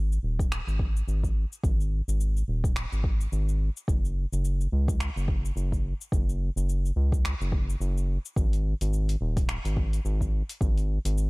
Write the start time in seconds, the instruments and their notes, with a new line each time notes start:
Already playing: analog synth bass G#1
0.12 cabasa
0.23 analog synth bass D#1
0.39 kick, cabasa
0.52 finger snap, cabasa
0.67 analog synth bass G#1, cabasa
0.79 kick
0.97 cabasa
1.08 analog synth bass G#1, cabasa
1.24 kick, cabasa
1.52 cabasa
1.64 analog synth bass G#1, kick, cabasa
1.81 cabasa
2.08 analog synth bass G#1, cabasa
2.20 cabasa
2.37 cabasa
2.48 analog synth bass D#1
2.64 kick, cabasa
2.76 finger snap, cabasa
2.92 analog synth bass G#1, cabasa
3.04 kick
3.21 cabasa
3.32 analog synth bass G#1, cabasa
3.49 cabasa
3.77 cabasa
3.88 analog synth bass F#1, kick, cabasa
4.05 cabasa
4.33 analog synth bass F#1, cabasa
4.45 cabasa
4.61 cabasa
4.72 analog synth bass C#2
4.88 kick, cabasa
5.00 finger snap, cabasa
5.16 analog synth bass F#1, cabasa
5.28 kick
5.45 cabasa
5.56 analog synth bass F#1, cabasa
5.72 kick, cabasa
6.01 cabasa
6.12 analog synth bass F#1, kick, cabasa
6.29 cabasa
6.56 analog synth bass F#1, cabasa
6.69 cabasa
6.86 cabasa
6.96 analog synth bass C#2
7.12 kick, cabasa
7.25 finger snap, cabasa
7.41 analog synth bass F#1, cabasa
7.52 kick
7.70 cabasa
7.80 analog synth bass F#1, cabasa
7.98 cabasa
8.25 cabasa
8.36 analog synth bass G#1, kick, cabasa
8.53 open hi-hat, cabasa
8.81 analog synth bass G#1, open hi-hat, cabasa
8.93 cabasa
9.09 open hi-hat, cabasa
9.21 analog synth bass D#1
9.37 kick, open hi-hat, cabasa
9.49 finger snap, cabasa
9.65 analog synth bass G#1, open hi-hat, cabasa
9.77 kick
9.93 open hi-hat, cabasa
10.05 analog synth bass G#1, cabasa
10.21 kick, cabasa
10.49 open hi-hat, cabasa
10.61 analog synth bass G#1, kick, cabasa
10.77 open hi-hat, cabasa
11.05 analog synth bass G#1, open hi-hat, cabasa
11.18 cabasa